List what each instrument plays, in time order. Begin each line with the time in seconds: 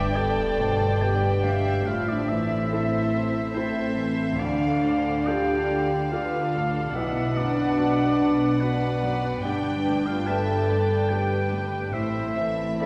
Already playing: double bass section G1, felt piano G2 D3, cello section G2, french horn section D4, viola section D4 D5, clarinet B4, oboe D5, violin section E5 G5, flute G5
0.15 felt piano B3 G4 D5, french horn section A4, violin section D5, oboe A5
0.58 felt piano B2, violin section C5
1.01 felt piano B3 G4 D5, french horn section G4, clarinet B4, violin section B4, oboe G5, flute G5
1.43 felt piano D3, violin section E5, flute F5
1.86 double bass section A1, felt piano A2, cello section A2, viola section C4 A4, french horn section F4, clarinet C5, violin section D5 E5, flute E5, oboe F5
2.08 french horn section D4, oboe D5
2.29 felt piano E3, french horn section E4, oboe E5
2.71 felt piano C4 E4 A4, violin section C5
3.15 felt piano C4
3.54 french horn section C4, felt piano C4 E4 A4, oboe C5, clarinet C5, violin section E5, flute E5
3.97 felt piano E3
4.38 double bass section D2, felt piano D2, cello section D3, french horn section D4, viola section D4, clarinet D5, oboe D5, violin section F5, flute F5
4.83 felt piano A2, violin section C5
5.26 felt piano D4 F4 A4, french horn section G4, violin section D5, oboe G5
5.70 felt piano D4
6.11 felt piano D4 F4 A4, french horn section F4, violin section B4, clarinet D5, oboe F5, flute F5
6.54 felt piano A2, violin section A4
6.94 double bass section B1, felt piano B1, cello section B2, french horn section E4, violin section B4 F#5, clarinet B4, viola section B4, oboe E5, flute F#5
7.36 felt piano F#2, french horn section D4, oboe D5
7.79 felt piano D4 F#4 B4
8.20 felt piano D4
8.60 french horn section B3, felt piano D4 F#4 B4, oboe B4, clarinet B4, violin section D5, flute F#5
9.03 felt piano F#2
9.43 double bass section G1, cello section G2, felt piano G2, french horn section D4, viola section D4, clarinet B4, oboe D5, flute G5, violin section G5
9.84 clarinet B4, flute G5
9.88 felt piano D3
10.06 french horn section F4, oboe F5
10.25 french horn section A4, clarinet B4, violin section E5, flute G5, oboe A5
10.29 felt piano D4 G4 B4
10.67 felt piano D4, clarinet B4, violin section D5, flute G5
11.09 felt piano D4 G4 B4, french horn section G4, clarinet B4, violin section B4, oboe G5, flute G5
11.50 felt piano D3, clarinet B4, flute G5
11.93 double bass section A1, felt piano A2, cello section A2, viola section C4 A4, french horn section E4, clarinet C5, violin section C5 E5, flute E5, oboe E5
12.37 felt piano E3, clarinet C5, flute E5, violin section E5
12.80 felt piano C4 E4 A4, clarinet C5, violin section D5, flute E5, oboe B5